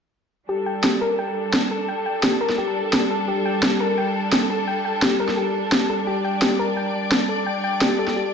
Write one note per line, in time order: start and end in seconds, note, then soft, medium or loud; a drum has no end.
0.49 8.34 G3 medium
0.49 8.34 D4 medium
0.49 0.59 G4 medium
0.49 6.05 A4 medium
0.66 0.76 G5 medium
0.84 0.94 G4 loud
0.84 snare loud
1.01 1.11 A#4 loud
1.19 1.29 G5 medium
1.54 snare loud
1.71 1.78 A4 medium
1.88 1.92 G5 medium
2.06 2.16 G5 medium
2.23 2.33 G4 loud
2.23 snare loud
2.41 2.51 A#4 loud
2.50 snare soft
2.58 2.65 G4 medium
2.93 3.00 G4 medium
2.93 snare loud
3.11 3.17 A4 medium
3.28 3.38 G4 medium
3.46 3.55 G5 medium
3.63 3.73 G4 loud
3.63 snare loud
3.80 3.90 A#4 loud
3.98 4.08 G5 medium
4.33 snare loud
4.50 4.57 A4 medium
4.68 4.72 G5 medium
4.85 4.95 G5 medium
5.02 5.12 G4 loud
5.02 snare loud
5.20 5.30 A#4 loud
5.29 snare soft
5.37 5.44 G4 medium
5.72 5.79 G4 medium
5.72 snare loud
5.90 5.96 A4 medium
6.07 6.17 G4 medium
6.07 8.34 D5 medium
6.24 6.34 G5 medium
6.42 6.52 G4 loud
6.42 snare loud
6.59 6.69 A#4 loud
6.77 6.87 G5 medium
7.12 snare loud
7.29 7.36 A4 medium
7.46 7.51 G5 medium
7.64 7.74 G5 medium
7.81 7.91 G4 loud
7.81 snare loud
7.99 8.06 A4 loud
8.08 snare soft
8.16 8.23 G4 medium